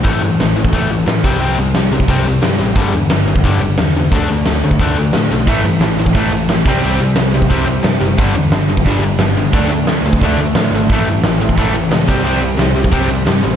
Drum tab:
HH |o-o-o-o-o-o-o-o-|o-o-o-o-o-o-o-o-|o-o-o-o-o-o-o-o-|o-o-o-o-o-o-o-o-|
SD |----o-------o---|----o-------o---|----o-------o---|----o-------o---|
BD |o------oo-----o-|-------oo-------|o------oo-------|o------oo-------|

HH |o-o-o-o-o-o-o-o-|o-o-o-o-o-o-o-o-|o-o-o-o-o-o-o-o-|o-o-o-o-o-o-o-o-|
SD |----o-------o---|----o-------o---|----o-------o---|----o-------o---|
BD |o------oo-----o-|-------oo-------|o------oo-------|o------oo-------|

HH |o-o-o-o-o-o-o-o-|o-o-o-o-o-o-o-o-|
SD |----o-------o---|----o-------o---|
BD |o------oo-----o-|-------oo-------|